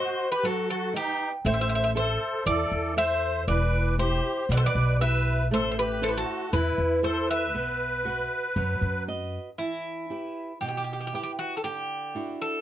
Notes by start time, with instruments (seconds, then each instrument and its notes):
Already playing: accordion F#4, nylon-string guitar F#4 D#5, bouzouki C5
0.32 accordion G4, bouzouki B4
0.43 nylon-string guitar F#3, accordion F#4, bouzouki A4
0.70 accordion F#4, bouzouki A4
0.94 accordion D#4, bouzouki G4, nylon-string guitar B4 D#5 F#5
1.45 upright bass A1, nylon-string guitar A3, accordion C5, bouzouki E5
1.54 bouzouki E5
1.61 bouzouki E5
1.69 bouzouki E5
1.75 bouzouki E5
1.84 bouzouki E5
1.95 nylon-string guitar A4 C5 E5, accordion A4, bouzouki C5
2.46 upright bass E2, nylon-string guitar E3, accordion A4, bouzouki D5
2.71 upright bass E2
2.96 nylon-string guitar A4 C5 E5, accordion C5, bouzouki E5
3.48 upright bass E1, nylon-string guitar E3, accordion B4, bouzouki D5
3.98 nylon-string guitar E4 G4, accordion G4, bouzouki C5
4.49 upright bass B1, nylon-string guitar B2, accordion B4, bouzouki D5
4.55 accordion A4, bouzouki C5
4.62 accordion B4, bouzouki D5
4.75 upright bass B1
5.00 nylon-string guitar E4 G4 B4, accordion B4, bouzouki E5
5.51 upright bass A1, nylon-string guitar A3, accordion A4, bouzouki C5
5.70 accordion A4, bouzouki C5
5.78 accordion G4, bouzouki B4
6.01 nylon-string guitar E4 A4 C5, accordion E4, bouzouki A4
6.09 accordion G4, bouzouki B4
6.16 accordion F#4, bouzouki A4
6.52 upright bass E2, nylon-string guitar E3, accordion E4, bouzouki B4
6.78 upright bass E2
7.03 nylon-string guitar E4 A4 C5, accordion A4, bouzouki C5
7.29 accordion B4, bouzouki E5
7.54 upright bass B1, nylon-string guitar B3
8.05 nylon-string guitar F#4 B4 F#5
8.56 upright bass F#2, nylon-string guitar F#3
8.81 upright bass F#2
9.08 nylon-string guitar F#4 B4 D#5
9.58 nylon-string guitar E3, bouzouki E4
10.10 nylon-string guitar E4 G4 B4
10.61 nylon-string guitar B2, bouzouki G4
10.68 bouzouki G4
10.77 bouzouki G4
10.84 bouzouki G4
10.93 bouzouki G4
11.01 bouzouki G4
11.07 bouzouki G4
11.13 nylon-string guitar E4 G4 B4, bouzouki G4
11.23 bouzouki G4
11.39 bouzouki F#4
11.57 bouzouki A4
11.64 nylon-string guitar D3, bouzouki G4
12.15 nylon-string guitar D4 E4 F#4
12.42 bouzouki A4